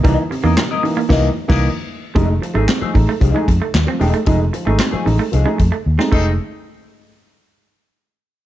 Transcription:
<<
  \new Staff \with { instrumentName = "Horn section" } { \time 4/4 \key c \dorian \tempo 4 = 113 r1 | r1 | r2. r8 <c' a' ees''>8 | r1 | }
  \new Staff \with { instrumentName = "Clean electric guitar" } { \time 4/4 \key c \dorian <e' bes' dis''>8 r16 <e' bes' dis''>16 r16 <e' bes' dis''>16 r8 <e' bes' dis''>8 r16 <e' bes' dis''>8 r8. | <a ees' gis'>8 r16 <a ees' gis'>16 r16 <a ees' gis'>16 r8 <a ees' gis'>8 r4 <a ees' gis'>8 | <a ees' gis'>16 r8 <a ees' gis'>16 r16 <a ees' gis'>16 r8 <a ees' gis'>8 r4 <a ees' gis'>16 r16 | r1 | }
  \new Staff \with { instrumentName = "Clean electric guitar" } { \time 4/4 \key c \dorian g16 r8 bes16 c'16 r8 bes16 r2 | f16 r8 a16 c'16 r8 a16 r16 gis16 r16 a16 r16 c'16 r16 a16 | f16 r8 a16 c'16 r8 a16 r16 gis16 r16 a16 r16 c'16 a8 | r1 | }
  \new Staff \with { instrumentName = "Upright piano" } { \time 4/4 \key c \dorian <e bes dis'>16 r16 c16 <e bes dis'>16 c16 r16 <e bes dis'>16 <bes dis'>16 <e bes dis'>8 r16 <e bes dis'>8 r8. | <gis a ees'>16 r16 f16 <gis a ees'>16 <a ees'>16 f16 <gis a ees'>16 r16 f16 <gis a ees'>16 <a ees'>16 r16 <a ees'>16 f16 <gis a ees'>16 r16 | <gis a ees'>16 r16 f16 <gis a ees'>16 <a ees'>16 f16 <gis a ees'>16 r16 f16 <gis a ees'>16 <a ees'>16 r8 <gis a ees'>16 <gis a ees'>8 | r1 | }
  \new Staff \with { instrumentName = "Fingered electric bass" } { \clef bass \time 4/4 \key c \dorian c,16 r8 e,16 r4 c,8 r16 c,8 r8. | f,,8 r16 gis,,16 r8 a,,16 r16 c,16 r16 f,16 r16 ees,16 r16 e,,16 r16 | f,,8 r16 gis,,16 r8 a,,16 r16 c,16 r16 f,16 r16 ees,16 r16 f,,8 | r1 | }
  \new DrumStaff \with { instrumentName = "Drums" } \drummode { \time 4/4 <hh bd>8 hho8 <hc hh sn>8 hho8 <cymc bd sn>8. <cymc bd sn>16 r4 | <hh bd>8 hh8 <hc hh sn>8 <hho bd>8 <hh bd>8 <hh bd>8 <hc hh sn>8 hho16 hh16 | <hh bd>8 hh8 <hc hh sn>8 hho8 hh8 <hh bd>8 r16 sn16 <cymc bd>8 | r4 r4 r4 r4 | }
>>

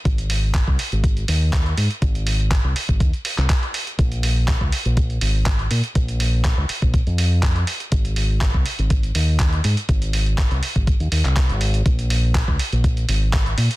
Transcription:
<<
  \new Staff \with { instrumentName = "Fingered electric bass" } { \clef bass \time 4/4 \key aes \major \tempo 4 = 122 aes,,4~ aes,,16 c,16 r16 aes,,8. ees,4 aes,16 r16 | aes,,4~ aes,,16 c,16 r16 aes,,16 ees,16 r8 c,16 r4 | bes,,4~ bes,,16 des,16 r16 bes,,8. aes,,4 bes,16 r16 | bes,,4~ bes,,16 des,16 r16 bes,,8 f,4~ f,16 r8 |
aes,,4~ aes,,16 c,16 r16 aes,,8. ees,4 aes,16 r16 | aes,,4~ aes,,16 c,16 r16 aes,,8 ees,16 ees,16 c,8 aes,,8. | bes,,4~ bes,,16 des,16 r16 bes,,8. aes,,4 bes,16 r16 | }
  \new DrumStaff \with { instrumentName = "Drums" } \drummode { \time 4/4 <hh bd>16 hh16 hho8 <hc hh bd>16 bd16 hho16 hh16 <hh bd>16 hh16 hho8 <hc hh bd>16 hh16 hho16 hh16 | <hh bd>16 hh16 hho16 hh16 <hc hh bd>8 hho16 <hh bd>16 <hh bd>16 hh16 hho16 <hc hh>16 <hc hh bd>16 hh16 hho16 hh16 | <hh bd>16 hh16 hho8 <hc hh bd>16 bd16 hho16 hh16 <hh bd>16 hh16 hho8 <hc hh bd>16 hh16 hho16 hh16 | <hh bd>16 hh16 hho8 <hc hh bd>8 hho16 <hh bd>16 <hh bd>16 hh16 hho8 <hc hh bd>16 hh16 hho16 hh16 |
<hh bd>16 hh16 hho8 <hc hh bd>16 bd16 hho16 hh16 <hh bd>16 hh16 hho8 <hc hh bd>16 hh16 hho16 hh16 | <hh bd>16 hh16 hho16 hh16 <hc hh bd>16 hh16 hho16 <hh bd>16 <hh bd>16 hh16 hho16 <hc hh>16 <hc hh bd>16 hh16 hho16 hh16 | <hh bd>16 hh16 hho8 <hc hh bd>16 bd16 hho16 hh16 <hh bd>16 hh16 hho8 <hc hh bd>16 hh16 hho16 hh16 | }
>>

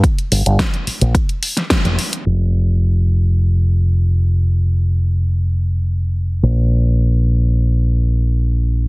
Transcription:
<<
  \new Staff \with { instrumentName = "Fingered electric bass" } { \clef bass \time 4/4 \key g \phrygian \tempo 4 = 108 r8 g,,16 g,,16 r8. bes,,16 r4 r16 f,,16 r8 | f,,1~ | f,,2.~ f,,8 bes,,8~ | bes,,1 | }
  \new DrumStaff \with { instrumentName = "Drums" } \drummode { \time 4/4 <hh bd>16 hh16 hho16 hh16 <hh bd sn>16 hh16 hho16 hh16 <hh bd>16 hh16 hho16 <hh sn>16 <hh bd sn>16 hh16 hho16 hh16 | r4 r4 r4 r4 | r4 r4 r4 r4 | r4 r4 r4 r4 | }
>>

